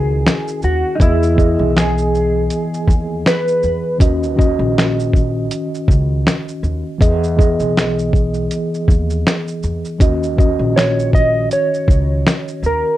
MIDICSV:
0, 0, Header, 1, 5, 480
1, 0, Start_track
1, 0, Tempo, 750000
1, 641, Time_signature, 4, 2, 24, 8
1, 8303, End_track
2, 0, Start_track
2, 0, Title_t, "Clean electric guitar"
2, 0, Program_c, 0, 27
2, 0, Note_on_c, 0, 68, 84
2, 410, Note_off_c, 0, 68, 0
2, 412, Note_on_c, 0, 66, 89
2, 610, Note_on_c, 0, 63, 63
2, 612, Note_off_c, 0, 66, 0
2, 645, Note_off_c, 0, 63, 0
2, 656, Note_on_c, 0, 64, 87
2, 1136, Note_on_c, 0, 68, 87
2, 1142, Note_off_c, 0, 64, 0
2, 2094, Note_off_c, 0, 68, 0
2, 2097, Note_on_c, 0, 71, 100
2, 2543, Note_off_c, 0, 71, 0
2, 6888, Note_on_c, 0, 73, 85
2, 7130, Note_off_c, 0, 73, 0
2, 7133, Note_on_c, 0, 75, 88
2, 7374, Note_off_c, 0, 75, 0
2, 7377, Note_on_c, 0, 73, 91
2, 8102, Note_off_c, 0, 73, 0
2, 8104, Note_on_c, 0, 70, 84
2, 8303, Note_off_c, 0, 70, 0
2, 8303, End_track
3, 0, Start_track
3, 0, Title_t, "Tine electric piano"
3, 0, Program_c, 1, 4
3, 0, Control_c, 1, 64, 127
3, 0, Note_on_c, 1, 51, 68
3, 0, Note_on_c, 1, 61, 60
3, 0, Note_on_c, 1, 64, 47
3, 0, Note_on_c, 1, 66, 60
3, 0, Note_on_c, 1, 70, 69
3, 0, Note_on_c, 1, 75, 74
3, 630, Note_on_c, 1, 52, 69
3, 639, Note_on_c, 1, 59, 65
3, 646, Note_on_c, 1, 68, 61
3, 648, Control_c, 1, 64, 0
3, 649, Note_off_c, 1, 66, 0
3, 651, Note_off_c, 1, 61, 0
3, 652, Note_off_c, 1, 70, 0
3, 652, Note_off_c, 1, 75, 0
3, 652, Note_on_c, 1, 75, 80
3, 653, Note_off_c, 1, 51, 0
3, 653, Note_off_c, 1, 64, 0
3, 747, Control_c, 1, 64, 127
3, 841, Note_off_c, 1, 52, 0
3, 845, Note_off_c, 1, 59, 0
3, 849, Note_off_c, 1, 68, 0
3, 852, Note_off_c, 1, 75, 0
3, 866, Note_on_c, 1, 52, 68
3, 873, Note_on_c, 1, 59, 57
3, 881, Note_on_c, 1, 68, 66
3, 890, Note_on_c, 1, 75, 72
3, 1689, Note_off_c, 1, 52, 0
3, 1692, Note_off_c, 1, 59, 0
3, 1696, Note_off_c, 1, 68, 0
3, 1701, Note_off_c, 1, 75, 0
3, 2549, Note_on_c, 1, 51, 69
3, 2557, Note_on_c, 1, 61, 67
3, 2564, Note_on_c, 1, 66, 59
3, 2570, Control_c, 1, 64, 0
3, 2570, Note_on_c, 1, 75, 76
3, 2692, Control_c, 1, 64, 127
3, 2761, Note_off_c, 1, 51, 0
3, 2764, Note_off_c, 1, 61, 0
3, 2768, Note_off_c, 1, 66, 0
3, 2771, Note_off_c, 1, 75, 0
3, 2787, Note_on_c, 1, 51, 71
3, 2795, Note_on_c, 1, 61, 63
3, 2800, Note_on_c, 1, 66, 62
3, 2809, Note_on_c, 1, 75, 80
3, 3609, Note_off_c, 1, 51, 0
3, 3613, Note_off_c, 1, 61, 0
3, 3616, Note_off_c, 1, 66, 0
3, 3620, Note_off_c, 1, 75, 0
3, 4469, Note_on_c, 1, 52, 67
3, 4477, Note_on_c, 1, 59, 58
3, 4484, Note_on_c, 1, 68, 63
3, 4489, Control_c, 1, 64, 0
3, 4489, Note_on_c, 1, 75, 76
3, 4612, Control_c, 1, 64, 127
3, 4680, Note_off_c, 1, 52, 0
3, 4684, Note_off_c, 1, 59, 0
3, 4688, Note_off_c, 1, 68, 0
3, 4691, Note_off_c, 1, 75, 0
3, 4708, Note_on_c, 1, 52, 70
3, 4716, Note_on_c, 1, 59, 59
3, 4724, Note_on_c, 1, 68, 62
3, 4731, Note_on_c, 1, 75, 79
3, 5530, Note_off_c, 1, 52, 0
3, 5534, Note_off_c, 1, 59, 0
3, 5538, Note_off_c, 1, 68, 0
3, 5541, Note_off_c, 1, 75, 0
3, 6391, Note_on_c, 1, 51, 66
3, 6399, Note_on_c, 1, 61, 60
3, 6407, Note_on_c, 1, 66, 59
3, 6408, Control_c, 1, 64, 0
3, 6413, Note_on_c, 1, 75, 73
3, 6507, Control_c, 1, 64, 127
3, 6602, Note_off_c, 1, 51, 0
3, 6606, Note_off_c, 1, 61, 0
3, 6610, Note_off_c, 1, 66, 0
3, 6612, Note_off_c, 1, 75, 0
3, 6631, Note_on_c, 1, 51, 72
3, 6641, Note_on_c, 1, 61, 60
3, 6648, Note_on_c, 1, 66, 56
3, 6654, Note_on_c, 1, 75, 69
3, 7451, Note_off_c, 1, 51, 0
3, 7456, Note_off_c, 1, 61, 0
3, 7460, Note_off_c, 1, 66, 0
3, 7463, Note_off_c, 1, 75, 0
3, 8303, End_track
4, 0, Start_track
4, 0, Title_t, "Upright bass"
4, 0, Program_c, 2, 32
4, 0, Note_on_c, 2, 37, 86
4, 141, Note_off_c, 2, 37, 0
4, 406, Note_on_c, 2, 39, 76
4, 526, Note_off_c, 2, 39, 0
4, 642, Note_on_c, 2, 40, 101
4, 989, Note_off_c, 2, 40, 0
4, 1018, Note_on_c, 2, 35, 85
4, 1577, Note_off_c, 2, 35, 0
4, 1842, Note_on_c, 2, 39, 84
4, 2061, Note_off_c, 2, 39, 0
4, 2326, Note_on_c, 2, 40, 72
4, 2446, Note_off_c, 2, 40, 0
4, 2562, Note_on_c, 2, 39, 97
4, 2909, Note_off_c, 2, 39, 0
4, 2938, Note_on_c, 2, 34, 89
4, 3497, Note_off_c, 2, 34, 0
4, 3763, Note_on_c, 2, 37, 84
4, 3982, Note_off_c, 2, 37, 0
4, 4243, Note_on_c, 2, 39, 78
4, 4364, Note_off_c, 2, 39, 0
4, 4485, Note_on_c, 2, 40, 106
4, 4831, Note_off_c, 2, 40, 0
4, 4862, Note_on_c, 2, 35, 81
4, 5419, Note_off_c, 2, 35, 0
4, 5684, Note_on_c, 2, 39, 87
4, 5903, Note_off_c, 2, 39, 0
4, 6167, Note_on_c, 2, 40, 76
4, 6286, Note_off_c, 2, 40, 0
4, 6403, Note_on_c, 2, 39, 95
4, 6750, Note_off_c, 2, 39, 0
4, 6779, Note_on_c, 2, 34, 81
4, 7337, Note_off_c, 2, 34, 0
4, 7604, Note_on_c, 2, 37, 81
4, 7822, Note_off_c, 2, 37, 0
4, 8080, Note_on_c, 2, 39, 76
4, 8203, Note_off_c, 2, 39, 0
4, 8303, End_track
5, 0, Start_track
5, 0, Title_t, "Drums"
5, 170, Note_on_c, 9, 38, 114
5, 177, Note_on_c, 9, 26, 88
5, 177, Note_on_c, 9, 42, 64
5, 177, Note_on_c, 9, 82, 68
5, 234, Note_off_c, 9, 38, 0
5, 241, Note_off_c, 9, 26, 0
5, 241, Note_off_c, 9, 42, 0
5, 241, Note_off_c, 9, 82, 0
5, 305, Note_on_c, 9, 82, 47
5, 369, Note_off_c, 9, 82, 0
5, 397, Note_on_c, 9, 82, 44
5, 461, Note_off_c, 9, 82, 0
5, 639, Note_on_c, 9, 36, 108
5, 647, Note_on_c, 9, 42, 59
5, 647, Note_on_c, 9, 82, 59
5, 703, Note_off_c, 9, 36, 0
5, 711, Note_off_c, 9, 42, 0
5, 711, Note_off_c, 9, 82, 0
5, 786, Note_on_c, 9, 82, 48
5, 850, Note_off_c, 9, 82, 0
5, 884, Note_on_c, 9, 36, 84
5, 891, Note_on_c, 9, 82, 46
5, 948, Note_off_c, 9, 36, 0
5, 955, Note_off_c, 9, 82, 0
5, 1131, Note_on_c, 9, 38, 102
5, 1137, Note_on_c, 9, 26, 89
5, 1138, Note_on_c, 9, 42, 52
5, 1138, Note_on_c, 9, 82, 55
5, 1195, Note_off_c, 9, 38, 0
5, 1201, Note_off_c, 9, 26, 0
5, 1202, Note_off_c, 9, 42, 0
5, 1202, Note_off_c, 9, 82, 0
5, 1267, Note_on_c, 9, 82, 45
5, 1331, Note_off_c, 9, 82, 0
5, 1374, Note_on_c, 9, 82, 37
5, 1438, Note_off_c, 9, 82, 0
5, 1602, Note_on_c, 9, 42, 62
5, 1602, Note_on_c, 9, 82, 57
5, 1666, Note_off_c, 9, 42, 0
5, 1666, Note_off_c, 9, 82, 0
5, 1751, Note_on_c, 9, 82, 43
5, 1815, Note_off_c, 9, 82, 0
5, 1840, Note_on_c, 9, 36, 83
5, 1855, Note_on_c, 9, 82, 49
5, 1904, Note_off_c, 9, 36, 0
5, 1919, Note_off_c, 9, 82, 0
5, 2087, Note_on_c, 9, 38, 107
5, 2094, Note_on_c, 9, 26, 82
5, 2095, Note_on_c, 9, 42, 65
5, 2095, Note_on_c, 9, 82, 65
5, 2151, Note_off_c, 9, 38, 0
5, 2158, Note_off_c, 9, 26, 0
5, 2159, Note_off_c, 9, 42, 0
5, 2159, Note_off_c, 9, 82, 0
5, 2226, Note_on_c, 9, 82, 47
5, 2290, Note_off_c, 9, 82, 0
5, 2321, Note_on_c, 9, 82, 41
5, 2385, Note_off_c, 9, 82, 0
5, 2561, Note_on_c, 9, 36, 106
5, 2566, Note_on_c, 9, 42, 61
5, 2566, Note_on_c, 9, 82, 58
5, 2625, Note_off_c, 9, 36, 0
5, 2630, Note_off_c, 9, 42, 0
5, 2630, Note_off_c, 9, 82, 0
5, 2708, Note_on_c, 9, 82, 46
5, 2772, Note_off_c, 9, 82, 0
5, 2808, Note_on_c, 9, 36, 88
5, 2819, Note_on_c, 9, 82, 45
5, 2872, Note_off_c, 9, 36, 0
5, 2883, Note_off_c, 9, 82, 0
5, 3060, Note_on_c, 9, 38, 111
5, 3067, Note_on_c, 9, 26, 84
5, 3068, Note_on_c, 9, 42, 57
5, 3068, Note_on_c, 9, 82, 56
5, 3124, Note_off_c, 9, 38, 0
5, 3131, Note_off_c, 9, 26, 0
5, 3132, Note_off_c, 9, 42, 0
5, 3132, Note_off_c, 9, 82, 0
5, 3197, Note_on_c, 9, 82, 43
5, 3261, Note_off_c, 9, 82, 0
5, 3286, Note_on_c, 9, 36, 80
5, 3301, Note_on_c, 9, 82, 37
5, 3350, Note_off_c, 9, 36, 0
5, 3365, Note_off_c, 9, 82, 0
5, 3527, Note_on_c, 9, 42, 65
5, 3527, Note_on_c, 9, 82, 60
5, 3591, Note_off_c, 9, 42, 0
5, 3591, Note_off_c, 9, 82, 0
5, 3676, Note_on_c, 9, 82, 44
5, 3740, Note_off_c, 9, 82, 0
5, 3764, Note_on_c, 9, 36, 90
5, 3781, Note_on_c, 9, 82, 49
5, 3828, Note_off_c, 9, 36, 0
5, 3845, Note_off_c, 9, 82, 0
5, 4011, Note_on_c, 9, 38, 97
5, 4018, Note_on_c, 9, 26, 88
5, 4018, Note_on_c, 9, 42, 59
5, 4018, Note_on_c, 9, 82, 63
5, 4075, Note_off_c, 9, 38, 0
5, 4082, Note_off_c, 9, 26, 0
5, 4082, Note_off_c, 9, 42, 0
5, 4082, Note_off_c, 9, 82, 0
5, 4148, Note_on_c, 9, 82, 44
5, 4212, Note_off_c, 9, 82, 0
5, 4248, Note_on_c, 9, 82, 43
5, 4312, Note_off_c, 9, 82, 0
5, 4484, Note_on_c, 9, 36, 103
5, 4493, Note_on_c, 9, 42, 60
5, 4493, Note_on_c, 9, 82, 57
5, 4548, Note_off_c, 9, 36, 0
5, 4557, Note_off_c, 9, 42, 0
5, 4557, Note_off_c, 9, 82, 0
5, 4631, Note_on_c, 9, 82, 44
5, 4695, Note_off_c, 9, 82, 0
5, 4728, Note_on_c, 9, 36, 91
5, 4739, Note_on_c, 9, 82, 47
5, 4792, Note_off_c, 9, 36, 0
5, 4803, Note_off_c, 9, 82, 0
5, 4861, Note_on_c, 9, 82, 46
5, 4925, Note_off_c, 9, 82, 0
5, 4976, Note_on_c, 9, 38, 102
5, 4983, Note_on_c, 9, 26, 83
5, 4983, Note_on_c, 9, 42, 55
5, 4983, Note_on_c, 9, 82, 54
5, 5040, Note_off_c, 9, 38, 0
5, 5047, Note_off_c, 9, 26, 0
5, 5047, Note_off_c, 9, 42, 0
5, 5047, Note_off_c, 9, 82, 0
5, 5112, Note_on_c, 9, 82, 42
5, 5176, Note_off_c, 9, 82, 0
5, 5204, Note_on_c, 9, 36, 85
5, 5217, Note_on_c, 9, 82, 39
5, 5268, Note_off_c, 9, 36, 0
5, 5281, Note_off_c, 9, 82, 0
5, 5337, Note_on_c, 9, 82, 44
5, 5401, Note_off_c, 9, 82, 0
5, 5446, Note_on_c, 9, 42, 60
5, 5446, Note_on_c, 9, 82, 57
5, 5510, Note_off_c, 9, 42, 0
5, 5510, Note_off_c, 9, 82, 0
5, 5596, Note_on_c, 9, 82, 39
5, 5660, Note_off_c, 9, 82, 0
5, 5683, Note_on_c, 9, 36, 82
5, 5697, Note_on_c, 9, 82, 47
5, 5747, Note_off_c, 9, 36, 0
5, 5761, Note_off_c, 9, 82, 0
5, 5824, Note_on_c, 9, 82, 54
5, 5888, Note_off_c, 9, 82, 0
5, 5931, Note_on_c, 9, 38, 108
5, 5938, Note_on_c, 9, 26, 90
5, 5938, Note_on_c, 9, 42, 65
5, 5938, Note_on_c, 9, 82, 61
5, 5995, Note_off_c, 9, 38, 0
5, 6002, Note_off_c, 9, 26, 0
5, 6002, Note_off_c, 9, 42, 0
5, 6002, Note_off_c, 9, 82, 0
5, 6065, Note_on_c, 9, 82, 46
5, 6129, Note_off_c, 9, 82, 0
5, 6162, Note_on_c, 9, 82, 42
5, 6226, Note_off_c, 9, 82, 0
5, 6303, Note_on_c, 9, 82, 44
5, 6367, Note_off_c, 9, 82, 0
5, 6401, Note_on_c, 9, 36, 100
5, 6405, Note_on_c, 9, 42, 62
5, 6405, Note_on_c, 9, 82, 65
5, 6465, Note_off_c, 9, 36, 0
5, 6469, Note_off_c, 9, 42, 0
5, 6469, Note_off_c, 9, 82, 0
5, 6547, Note_on_c, 9, 82, 45
5, 6611, Note_off_c, 9, 82, 0
5, 6646, Note_on_c, 9, 36, 89
5, 6655, Note_on_c, 9, 82, 44
5, 6710, Note_off_c, 9, 36, 0
5, 6719, Note_off_c, 9, 82, 0
5, 6897, Note_on_c, 9, 38, 115
5, 6903, Note_on_c, 9, 26, 85
5, 6904, Note_on_c, 9, 42, 57
5, 6904, Note_on_c, 9, 82, 53
5, 6961, Note_off_c, 9, 38, 0
5, 6967, Note_off_c, 9, 26, 0
5, 6968, Note_off_c, 9, 42, 0
5, 6968, Note_off_c, 9, 82, 0
5, 7034, Note_on_c, 9, 82, 45
5, 7098, Note_off_c, 9, 82, 0
5, 7125, Note_on_c, 9, 36, 91
5, 7137, Note_on_c, 9, 82, 37
5, 7189, Note_off_c, 9, 36, 0
5, 7201, Note_off_c, 9, 82, 0
5, 7367, Note_on_c, 9, 42, 63
5, 7367, Note_on_c, 9, 82, 59
5, 7431, Note_off_c, 9, 42, 0
5, 7431, Note_off_c, 9, 82, 0
5, 7514, Note_on_c, 9, 82, 42
5, 7578, Note_off_c, 9, 82, 0
5, 7603, Note_on_c, 9, 36, 89
5, 7617, Note_on_c, 9, 82, 47
5, 7667, Note_off_c, 9, 36, 0
5, 7681, Note_off_c, 9, 82, 0
5, 7850, Note_on_c, 9, 38, 104
5, 7857, Note_on_c, 9, 26, 92
5, 7858, Note_on_c, 9, 42, 62
5, 7858, Note_on_c, 9, 82, 66
5, 7914, Note_off_c, 9, 38, 0
5, 7921, Note_off_c, 9, 26, 0
5, 7922, Note_off_c, 9, 42, 0
5, 7922, Note_off_c, 9, 82, 0
5, 7986, Note_on_c, 9, 82, 45
5, 8050, Note_off_c, 9, 82, 0
5, 8086, Note_on_c, 9, 82, 45
5, 8150, Note_off_c, 9, 82, 0
5, 8303, End_track
0, 0, End_of_file